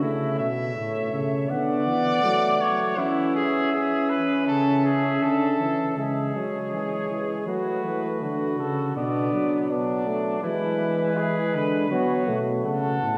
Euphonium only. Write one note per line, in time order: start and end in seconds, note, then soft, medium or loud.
0.02 0.49 A3 medium
0.76 1.46 A3 medium
1.50 2.22 B3 medium
2.24 2.96 A3 medium
2.98 5.94 C#4 medium
5.98 7.49 G#3 medium
7.47 8.79 A3 medium
8.96 9.69 D4 medium
9.70 10.06 B3 medium
10.06 10.42 A3 medium
10.43 11.88 G#3 medium
11.91 12.30 B3 medium
12.28 13.12 A3 medium